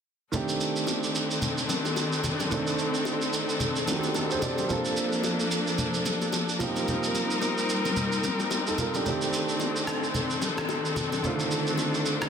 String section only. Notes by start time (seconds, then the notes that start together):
0.33 D#3 C4 D4 A4
4.70 F3 A#3 D4
6.60 G3 C4 D#4 A#4
9.06 D#3 D4 A4